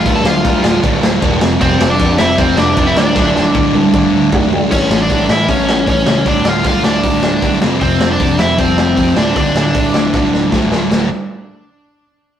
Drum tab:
CC |x-x-x-x-|x-x-x-x-|--------|x-------|
HH |--------|--------|--------|--o-o-o-|
SD |-o-o-o-o|-o-o-o-o|oo------|-o-o-o-o|
T1 |--------|--------|---o----|--------|
T2 |--------|--------|----o---|--------|
FT |--------|--------|------oo|--------|
BD |o-o-o-o-|o-o-o-o-|o-o-o-o-|o-o-o-o-|

CC |--------|--------|--------|x-------|
HH |o-o-o-o-|o-o-o-o-|o-o-----|--------|
SD |-o-o-o-o|-o-o-o-o|-o-ooooo|o-------|
T1 |--------|--------|--------|--------|
T2 |--------|--------|--------|--------|
FT |--------|--------|--------|--------|
BD |o-o-o-o-|o-o-o-o-|o-o-o-o-|--------|